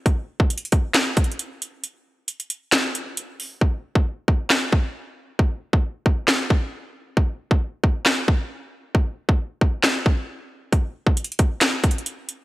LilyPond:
\new DrumStaff \with { instrumentName = "Drums" } \drummode { \time 4/4 \tempo 4 = 135 <hh bd>8. bd16 \tuplet 3/2 { hh16 hh16 hh16 <hh bd>16 r16 r16 <hc hh sn>16 r16 r16 <hh bd>16 hh16 hh16 } hh8 hh8 | hh4 hh16 hh16 hh8 <hc hh sn>8 hh8 hh8 hho8 | bd8. bd16 r8 bd8 <hc sn>8 bd8 r4 | bd8. bd16 r8 bd8 <hc sn>8 bd8 r4 |
bd8. bd16 r8 bd8 <hc sn>8 bd8 r4 | bd8. bd16 r8 bd8 <hc sn>8 bd8 r4 | <hh bd>8. bd16 \tuplet 3/2 { hh16 hh16 hh16 <hh bd>16 r16 r16 <hc hh sn>16 r16 r16 <hh bd>16 hh16 hh16 } hh8 hh8 | }